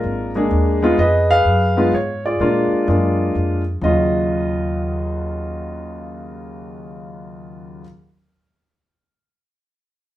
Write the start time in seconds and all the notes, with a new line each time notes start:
Already playing: G#3 A#3 D4 F4 A#4
0.04 G#1
0.35 G#3 A#3 D4 G#4
0.51 D#2
0.83 G#3 B3 D#4 F4
0.98 F2 G#4 B4 D#5
1.31 G#4 B4 F5
1.45 F#2
1.77 G#3 B3 D#4 F4
1.92 G#2 C#5
2.26 F4 G#4 D5
2.40 A#2 G#3 A#3 D4 F4
2.71 muted upright bass stroke
2.88 F#2 G#3 A#3 D4 F4
3.35 F2
3.81 D#2 C#3 F#3 F4 D#5